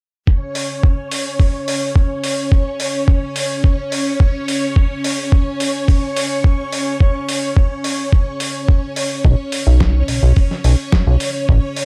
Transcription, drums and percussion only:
0.27 kick
0.55 open hi-hat
0.83 kick
1.11 open hi-hat
1.40 kick, open hi-hat
1.68 open hi-hat
1.96 kick
2.24 open hi-hat
2.52 kick
2.80 open hi-hat
3.08 kick
3.36 open hi-hat
3.64 kick
3.92 open hi-hat
4.20 kick
4.48 open hi-hat
4.76 kick
5.04 open hi-hat
5.32 kick
5.60 open hi-hat
5.88 kick, open hi-hat
6.17 open hi-hat
6.44 kick
6.72 open hi-hat
7.00 kick
7.29 open hi-hat
7.57 kick
7.84 open hi-hat
8.13 kick
8.40 open hi-hat
8.69 kick
8.96 open hi-hat
9.25 kick
9.52 open hi-hat
9.80 kick, snare
10.08 open hi-hat
10.36 kick, open hi-hat
10.51 snare
10.64 open hi-hat
10.92 kick, snare
11.20 open hi-hat
11.49 kick
11.76 open hi-hat

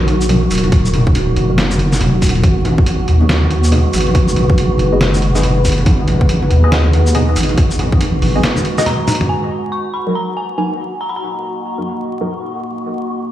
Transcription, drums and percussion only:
0.07 closed hi-hat, high bongo
0.21 shaker
0.29 closed hi-hat, high conga, low conga
0.43 high bongo
0.51 open hi-hat, shaker
0.55 closed hi-hat
0.58 closed hi-hat
0.63 closed hi-hat, high bongo, high conga
0.72 kick, closed hi-hat
0.85 shaker
0.94 closed hi-hat, high bongo, high conga, low conga
1.07 kick
1.15 closed hi-hat, high bongo
1.36 closed hi-hat, high conga, low conga
1.50 high bongo
1.58 snare, closed hi-hat
1.71 high bongo, high conga, shaker
1.79 closed hi-hat
1.93 snare, shaker
2.01 closed hi-hat, high bongo, high conga, low conga
2.22 kick, open hi-hat, high bongo, shaker
2.27 closed hi-hat
2.29 closed hi-hat
2.35 closed hi-hat, high conga
2.43 kick, closed hi-hat, high bongo
2.65 closed hi-hat, high bongo, high conga, low conga
2.78 kick
2.86 closed hi-hat
2.99 high bongo
3.07 closed hi-hat, high conga, low conga
3.21 high bongo
3.29 snare, closed hi-hat
3.43 high conga
3.51 closed hi-hat, high bongo
3.64 shaker
3.72 closed hi-hat, high bongo, high conga, low conga
3.93 open hi-hat, shaker
3.98 closed hi-hat
4.01 closed hi-hat
4.06 closed hi-hat, high bongo, high conga
4.15 kick, closed hi-hat
4.28 high bongo, shaker
4.36 closed hi-hat, high conga, low conga
4.50 kick
4.58 closed hi-hat, high bongo
4.78 closed hi-hat, high bongo, high conga, low conga
5.01 snare, closed hi-hat
5.14 high bongo, high conga, shaker
5.22 closed hi-hat
5.35 snare, high bongo, shaker
5.43 closed hi-hat, high conga, low conga
5.65 kick, open hi-hat, high bongo, shaker
5.69 closed hi-hat
5.72 closed hi-hat
5.79 high conga
5.86 kick, closed hi-hat, high bongo
6.07 closed hi-hat, high conga, low conga
6.21 kick, high bongo
6.29 closed hi-hat
6.42 high bongo
6.50 closed hi-hat, high conga, low conga
6.72 snare, closed hi-hat, high bongo
6.85 high conga
6.93 closed hi-hat, high bongo
7.07 shaker
7.15 closed hi-hat, high conga, low conga
7.29 high bongo
7.36 open hi-hat, shaker
7.41 closed hi-hat
7.43 closed hi-hat
7.49 closed hi-hat, high bongo, high conga
7.58 kick, closed hi-hat
7.71 shaker
7.79 closed hi-hat, high bongo, high conga, low conga
7.92 kick
8.01 closed hi-hat, high bongo
8.21 open hi-hat, high conga, low conga
8.35 high bongo
8.43 snare, closed hi-hat
8.56 high bongo, high conga, shaker
8.65 closed hi-hat
8.78 snare, shaker
8.86 closed hi-hat, high bongo, high conga, low conga
9.07 open hi-hat, high tom, high bongo, shaker
9.12 closed hi-hat
9.15 closed hi-hat
9.20 mid tom, high conga

